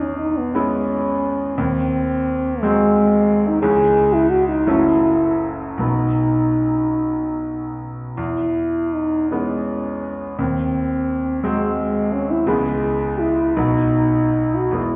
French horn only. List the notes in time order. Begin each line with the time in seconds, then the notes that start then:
0.01 C#4
0.18 D#4
0.37 B3
0.54 C#4
1.58 C4
2.62 G#3
3.47 D#4
3.62 G#4
4.13 E4
4.30 F#4
4.48 D#4
4.67 E4
5.82 D#4
8.17 E4
8.93 D#4
9.31 C#4
10.39 C4
11.44 G#3
12.13 C#4
12.31 E4
12.48 G#4
13.20 E4
13.56 D#4
14.56 F#4
14.76 E4